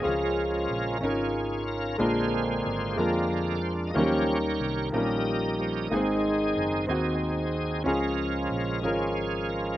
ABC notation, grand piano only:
X:1
M:6/8
L:1/8
Q:3/8=61
K:Db
V:1 name="Grand piano"
[D,DFA]3 [DEFB]3 | [B,,A,B,=DFB]3 [A,B,DFB]3 | [E,G,=G,B,DEB]3 [F,G,B,DEB]3 | [A,,B,CEA]3 [CEG]3 |
[D,DFA]3 [DFB]3 |]